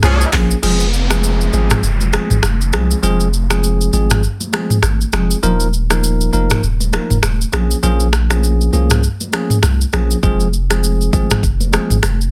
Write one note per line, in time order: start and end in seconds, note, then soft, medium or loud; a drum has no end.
0.03 0.25 C2 loud
0.03 0.29 F3 loud
0.03 0.29 C#4 loud
0.03 0.28 G#4 loud
0.03 finger snap medium
0.03 cross-stick loud
0.03 high conga medium
0.03 shaker medium
0.21 shaker medium
0.33 0.55 A#1 loud
0.33 0.57 F3 medium
0.33 0.57 A#3 medium
0.33 0.57 C#4 medium
0.33 0.57 G#4 medium
0.33 finger snap medium
0.33 kick loud
0.33 cross-stick loud
0.33 clap loud
0.33 open hi-hat medium
0.33 low conga medium
0.33 shaker medium
0.51 shaker medium
0.63 1.49 F1 loud
0.63 0.87 F3 medium
0.63 0.87 G#3 medium
0.63 0.87 C4 medium
0.63 0.87 G#4 loud
0.63 crash medium
0.63 downlifter medium
0.63 low conga medium
0.63 shaker medium
0.80 high conga medium
0.80 shaker medium
0.93 shaker medium
1.10 1.50 F3 medium
1.10 1.50 G#3 medium
1.10 1.50 C4 medium
1.10 1.50 G#4 medium
1.10 finger snap medium
1.10 cross-stick medium
1.10 high conga medium
1.10 shaker medium
1.24 shaker medium
1.41 shaker soft
1.53 1.75 G#1 loud
1.53 1.81 F3 medium
1.53 1.81 G#3 medium
1.53 1.81 C4 medium
1.53 1.81 G#4 medium
1.53 high conga medium
1.53 shaker medium
1.70 finger snap medium
1.70 cross-stick loud
1.70 mid tom loud
1.70 shaker medium
1.83 2.17 F1 loud
1.83 shaker medium
2.01 high conga medium
2.01 shaker soft
2.13 2.37 F3 medium
2.13 2.37 G#3 medium
2.13 2.37 C4 medium
2.13 2.37 G#4 medium
2.13 finger snap medium
2.13 cross-stick loud
2.13 high conga medium
2.13 shaker medium
2.30 2.40 G#1 loud
2.30 mid tom medium
2.30 shaker medium
2.43 2.75 F1 medium
2.43 finger snap medium
2.43 cross-stick medium
2.43 high conga medium
2.43 shaker medium
2.61 shaker soft
2.73 2.95 C2 medium
2.73 2.97 F3 medium
2.73 2.97 G#3 medium
2.73 2.97 C4 medium
2.73 2.97 G#4 medium
2.73 finger snap medium
2.73 cross-stick loud
2.73 low conga medium
2.73 shaker medium
2.91 shaker medium
3.03 3.89 F1 loud
3.03 3.27 F3 loud
3.03 3.27 G#3 medium
3.03 3.27 C4 medium
3.03 3.27 G#4 loud
3.03 low conga medium
3.03 shaker medium
3.20 high conga medium
3.20 shaker medium
3.33 shaker medium
3.50 3.90 F3 medium
3.50 3.90 G#3 medium
3.50 3.90 C4 medium
3.50 3.90 G#4 medium
3.50 finger snap medium
3.50 cross-stick medium
3.50 high conga medium
3.50 shaker medium
3.64 shaker medium
3.81 shaker soft
3.93 4.27 G#1 medium
3.93 4.21 F3 medium
3.93 4.21 G#3 medium
3.93 4.21 C4 medium
3.93 4.21 G#4 medium
3.93 high conga medium
3.93 shaker medium
4.10 finger snap medium
4.10 cross-stick medium
4.10 mid tom medium
4.10 shaker medium
4.23 shaker medium
4.40 high conga medium
4.40 shaker medium
4.53 4.77 F3 medium
4.53 4.77 G#3 medium
4.53 4.77 C4 medium
4.53 4.77 G#4 medium
4.53 finger snap medium
4.53 cross-stick loud
4.53 high conga medium
4.53 shaker medium
4.70 mid tom medium
4.70 shaker medium
4.83 5.05 G#1 medium
4.83 finger snap medium
4.83 cross-stick medium
4.83 high conga medium
4.83 shaker medium
5.01 shaker medium
5.13 5.35 F1 medium
5.13 5.37 F3 medium
5.13 5.37 G#3 medium
5.13 5.37 C4 medium
5.13 5.37 G#4 medium
5.13 finger snap medium
5.13 cross-stick loud
5.13 low conga medium
5.13 shaker medium
5.31 shaker medium
5.43 6.29 D#1 loud
5.43 5.67 F3 medium
5.43 5.67 A#3 medium
5.43 5.67 D#4 medium
5.43 5.67 A#4 loud
5.43 low conga medium
5.43 shaker medium
5.60 high conga medium
5.60 shaker medium
5.73 shaker soft
5.90 6.30 F3 medium
5.90 6.30 A#3 medium
5.90 6.30 D#4 medium
5.90 6.30 A#4 medium
5.90 finger snap medium
5.90 cross-stick medium
5.90 high conga medium
5.90 shaker medium
6.04 shaker medium
6.21 shaker medium
6.33 6.55 F1 loud
6.33 6.61 F3 medium
6.33 6.61 A#3 medium
6.33 6.61 D#4 medium
6.33 6.61 A#4 medium
6.33 high conga medium
6.33 shaker medium
6.50 finger snap medium
6.50 cross-stick medium
6.50 mid tom loud
6.50 shaker medium
6.63 6.97 D#1 loud
6.63 shaker medium
6.80 high conga medium
6.80 shaker medium
6.93 7.17 F3 medium
6.93 7.17 A#3 medium
6.93 7.17 D#4 medium
6.93 7.17 A#4 medium
6.93 finger snap medium
6.93 cross-stick loud
6.93 high conga medium
6.93 shaker medium
7.10 7.20 F1 medium
7.10 mid tom medium
7.10 shaker medium
7.23 7.45 D#1 loud
7.23 finger snap medium
7.23 cross-stick medium
7.23 high conga medium
7.23 shaker medium
7.41 shaker medium
7.53 7.75 A#1 loud
7.53 7.77 F3 medium
7.53 7.77 A#3 medium
7.53 7.77 C#4 medium
7.53 7.77 G#4 medium
7.53 finger snap medium
7.53 cross-stick loud
7.53 low conga medium
7.53 shaker medium
7.71 shaker medium
7.83 8.69 A#1 loud
7.83 8.07 F3 loud
7.83 8.07 A#3 medium
7.83 8.07 C#4 medium
7.83 8.07 G#4 loud
7.83 low conga medium
7.83 shaker medium
8.00 high conga medium
8.00 shaker medium
8.13 finger snap medium
8.13 cross-stick medium
8.13 shaker soft
8.30 8.70 F3 medium
8.30 8.70 A#3 medium
8.30 8.70 C#4 medium
8.30 8.70 G#4 medium
8.30 finger snap medium
8.30 cross-stick medium
8.30 high conga medium
8.30 shaker medium
8.43 shaker medium
8.61 shaker soft
8.73 9.07 C2 loud
8.73 9.01 F3 medium
8.73 9.01 A#3 medium
8.73 9.01 C#4 medium
8.73 9.01 G#4 medium
8.73 high conga medium
8.73 shaker medium
8.90 finger snap medium
8.90 cross-stick medium
8.90 mid tom loud
8.90 shaker medium
9.03 shaker medium
9.21 high conga medium
9.21 shaker medium
9.33 9.57 F3 medium
9.33 9.57 A#3 medium
9.33 9.57 C#4 medium
9.33 9.57 G#4 medium
9.33 finger snap medium
9.33 cross-stick loud
9.33 high conga medium
9.33 shaker medium
9.50 mid tom medium
9.50 shaker medium
9.63 9.85 C2 loud
9.63 finger snap medium
9.63 cross-stick medium
9.63 high conga medium
9.63 shaker medium
9.81 shaker medium
9.93 10.15 A#1 loud
9.93 10.17 F3 medium
9.93 10.17 A#3 medium
9.93 10.17 C#4 medium
9.93 10.17 G#4 medium
9.93 finger snap medium
9.93 cross-stick medium
9.93 low conga medium
9.93 shaker medium
10.11 shaker medium
10.23 11.09 F1 loud
10.23 10.47 F3 loud
10.23 10.47 G#3 medium
10.23 10.47 C4 medium
10.23 10.47 G#4 loud
10.23 kick loud
10.23 low conga medium
10.23 shaker medium
10.40 high conga medium
10.40 shaker medium
10.53 shaker soft
10.70 11.10 F3 medium
10.70 11.10 G#3 medium
10.70 11.10 C4 medium
10.70 11.10 G#4 medium
10.70 finger snap medium
10.70 cross-stick medium
10.70 high conga medium
10.70 shaker medium
10.84 shaker medium
11.01 shaker medium
11.13 11.35 G#1 loud
11.13 11.41 F3 medium
11.13 11.41 G#3 medium
11.13 11.41 C4 medium
11.13 11.41 G#4 medium
11.13 kick loud
11.13 high conga medium
11.13 shaker medium
11.30 finger snap medium
11.30 cross-stick medium
11.30 mid tom loud
11.30 shaker medium
11.43 11.77 F1 loud
11.43 kick medium
11.43 shaker medium
11.60 high conga medium
11.60 shaker soft
11.73 11.97 F3 medium
11.73 11.97 G#3 medium
11.73 11.97 C4 medium
11.73 11.97 G#4 medium
11.73 finger snap medium
11.73 cross-stick loud
11.73 high conga medium
11.73 shaker medium
11.90 12.00 G#1 medium
11.90 mid tom medium
11.90 shaker medium
12.03 12.31 F1 medium
12.03 finger snap medium
12.03 cross-stick medium
12.03 high conga medium
12.03 shaker medium
12.21 shaker medium